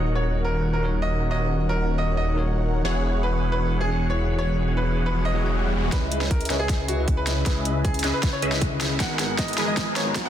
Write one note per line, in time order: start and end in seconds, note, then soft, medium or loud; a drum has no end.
0.00 2.83 D#1 medium
0.00 0.80 D#3 medium
0.00 2.82 D#3 medium
0.00 0.80 D#4 medium
0.00 2.82 D#4 medium
0.00 0.81 F#4 medium
0.00 0.81 A#4 medium
0.00 2.82 A#4 medium
0.00 0.82 C#5 medium
0.00 2.82 C#5 medium
0.00 2.82 F#5 medium
0.15 0.40 C#5 medium
0.45 0.68 A#4 medium
0.73 0.97 A#4 medium
0.81 1.28 D#3 medium
0.81 1.28 D#4 medium
0.81 1.29 F#4 medium
0.81 1.29 A#4 medium
0.85 1.30 C#5 medium
1.02 1.26 D#5 medium
1.29 2.33 D#3 medium
1.29 2.34 D#4 medium
1.29 2.34 F#4 medium
1.29 2.35 A#4 medium
1.29 1.63 D#5 medium
1.33 2.35 C#5 medium
1.69 1.93 A#4 medium
1.98 2.14 D#5 medium
2.17 2.41 D#5 medium
2.35 2.81 D#3 medium
2.35 2.82 D#4 medium
2.35 2.82 F#4 medium
2.35 2.83 A#4 medium
2.39 2.83 C#5 loud
2.83 5.91 E1 medium
2.83 3.87 E3 medium
2.83 5.90 E3 medium
2.83 3.88 B3 medium
2.83 5.90 E4 medium
2.83 3.88 F#4 medium
2.83 5.90 G#4 medium
2.83 3.89 G#4 medium
2.83 3.17 C#5 medium
2.83 5.90 C#5 medium
2.83 3.89 C#5 medium
2.83 5.90 F#5 medium
2.83 riser medium
3.23 3.47 B4 medium
3.52 3.76 B4 medium
3.81 4.05 G#4 medium
3.89 4.35 E3 medium
3.89 4.36 B3 medium
3.89 4.36 F#4 medium
3.89 4.37 G#4 medium
3.93 4.37 C#5 loud
4.10 4.34 C#5 medium
4.37 5.32 E3 medium
4.37 5.32 B3 medium
4.37 5.33 F#4 medium
4.37 5.33 G#4 medium
4.37 4.71 C#5 medium
4.37 5.34 C#5 medium
4.77 5.01 B4 medium
5.06 5.22 B4 medium
5.25 5.49 D#5 medium
5.34 5.41 E3 medium
5.34 5.42 B3 medium
5.34 5.42 F#4 medium
5.34 5.42 G#4 medium
5.34 5.42 C#5 loud
5.42 5.89 E3 medium
5.42 5.90 B3 medium
5.42 5.90 F#4 medium
5.42 5.91 G#4 medium
5.42 5.91 F#5 loud
5.90 6.48 C#2 medium
5.90 6.95 C#3 medium
5.90 6.95 C#4 medium
5.90 6.48 C#4 medium
5.90 6.96 E4 medium
5.90 6.48 G#4 medium
5.90 6.25 B4 medium
5.90 6.48 B4 medium
5.90 6.48 D#5 medium
5.90 kick loud
5.90 snare soft
5.90 closed hi-hat medium
5.90 riser medium
5.94 6.97 B4 medium
6.12 closed hi-hat medium
6.21 snare soft
6.30 6.55 A#4 medium
6.30 kick loud
6.30 closed hi-hat medium
6.41 closed hi-hat soft
6.45 closed hi-hat medium
6.50 7.44 C#2 medium
6.50 7.44 C#4 medium
6.50 7.44 G#4 medium
6.50 7.44 B4 medium
6.50 7.44 D#5 medium
6.50 7.44 E5 loud
6.50 snare soft
6.50 closed hi-hat medium
6.59 6.84 G#4 loud
6.69 kick loud
6.69 snare soft
6.69 closed hi-hat medium
6.88 7.12 F#4 medium
6.88 closed hi-hat medium
6.96 7.43 C#3 medium
6.96 7.43 C#4 medium
6.96 7.44 E4 medium
6.96 7.45 B4 loud
7.08 kick medium
7.08 closed hi-hat medium
7.17 7.41 B4 medium
7.27 snare medium
7.27 closed hi-hat medium
7.44 8.02 C#2 loud
7.44 8.49 C#3 medium
7.44 8.49 C#4 medium
7.44 8.02 C#4 medium
7.44 8.50 E4 medium
7.44 8.02 G#4 medium
7.44 7.78 B4 medium
7.44 8.02 B4 medium
7.44 8.02 D#5 medium
7.44 8.02 E5 medium
7.44 kick medium
7.44 snare medium
7.44 closed hi-hat medium
7.48 8.51 B4 medium
7.65 closed hi-hat medium
7.84 8.09 G#4 medium
7.84 kick loud
7.84 closed hi-hat medium
7.94 closed hi-hat soft
7.99 closed hi-hat medium
8.04 8.12 C#2 medium
8.04 8.14 C#4 medium
8.04 8.14 G#4 medium
8.04 8.14 B4 medium
8.04 8.14 D#5 medium
8.04 8.14 E5 loud
8.04 snare medium
8.04 closed hi-hat medium
8.13 8.29 B4 medium
8.23 kick loud
8.23 snare medium
8.23 closed hi-hat medium
8.33 8.57 C#5 loud
8.42 9.01 C#2 medium
8.42 8.98 C#4 medium
8.42 8.98 G#4 medium
8.42 8.98 B4 medium
8.42 8.98 D#5 medium
8.42 8.98 E5 medium
8.42 closed hi-hat medium
8.50 8.97 C#3 medium
8.50 8.97 C#4 medium
8.50 8.98 E4 medium
8.50 snare medium
8.54 8.99 B4 loud
8.62 kick medium
8.62 closed hi-hat medium
8.81 snare medium
8.81 closed hi-hat medium
8.98 9.56 G#1 loud
8.98 10.03 G#3 medium
8.98 9.56 G#3 medium
8.98 10.03 D#4 medium
8.98 10.04 F#4 medium
8.98 9.56 G#4 medium
8.98 9.56 A#4 medium
8.98 9.56 B4 medium
8.98 9.32 F#5 loud
8.98 9.56 F#5 loud
8.98 10.04 A#5 medium
8.98 kick loud
8.98 snare medium
8.98 closed hi-hat medium
9.02 10.05 B3 loud
9.19 snare medium
9.19 closed hi-hat medium
9.38 9.63 D#5 medium
9.38 kick loud
9.38 snare medium
9.38 closed hi-hat medium
9.48 closed hi-hat soft
9.53 closed hi-hat medium
9.58 10.29 G#1 loud
9.58 10.29 G#3 medium
9.58 10.29 G#4 medium
9.58 10.29 A#4 medium
9.58 10.29 B4 medium
9.58 10.29 G#5 loud
9.58 snare medium
9.58 closed hi-hat medium
9.67 9.91 D#5 medium
9.77 kick loud
9.77 snare medium
9.77 closed hi-hat medium
9.96 10.20 C#5 loud
9.96 snare medium
9.96 closed hi-hat medium
10.04 10.29 G#3 medium
10.04 10.29 D#4 medium
10.04 10.29 F#4 medium
10.04 10.29 A#5 medium
10.08 10.29 B3 loud
10.15 kick loud
10.15 snare medium
10.15 closed hi-hat medium
10.25 10.29 F#5 loud